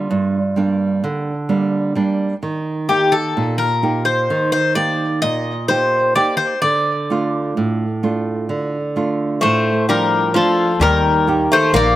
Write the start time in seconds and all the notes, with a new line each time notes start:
Already playing: G3 A#3 D4 F4
0.11 G2
0.56 G3 A#3 D4
1.04 D3
1.49 G3 A#3 D4
1.95 G3 A#3 D4
2.43 D#3
2.89 A#3 D#4 G4
3.12 A4
3.37 A#2
3.58 A#4
3.83 A#3 D#4 G4
4.05 C5
4.30 D#3
4.52 C5
4.75 A#3 D#4 G4 D5
5.22 A#2 D#5
5.68 A#3 D#4 G4 C5
6.16 A#3 D#4 G4 D5
6.37 C5
6.62 D3 D5
7.10 A3 D4 F4
7.57 A2
8.03 A3 D4 F4
8.49 D3
8.96 A3 D4 F4
9.41 A2 A3 C5
9.89 F3 G3 D4 F4 A#4
10.34 F3 A3 D4 F4 A4
10.80 D#2 D#3 G3 A#4
11.27 A#3 D#4 G4
11.52 A3 C5
11.73 A#1 A#3 D5